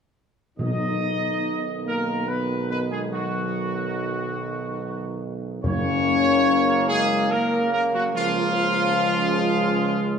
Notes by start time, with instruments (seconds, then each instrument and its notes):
0.58 tuba B1, trombone section B2 D#3, timpani B2, french horn section D#4, trumpet section D#5
1.85 french horn section A#3, trumpet section A#4
2.27 french horn section B3, trumpet section B4
2.69 french horn section B3, trumpet section B4
2.91 french horn section G#3, trumpet section G#4
3.12 french horn section F#3, trumpet section F#4
5.63 tuba F#1, timpani F#2, trombone section C#3 A#3, french horn section C#4, trumpet section C#5
6.89 french horn section G#3, trumpet section G#4
7.31 french horn section A#3, trumpet section A#4
7.71 french horn section A#3, trumpet section A#4
7.93 french horn section F#3, trumpet section F#4
8.13 tuba C#2, french horn section F3, trumpet section F4
8.95 trombone section G#3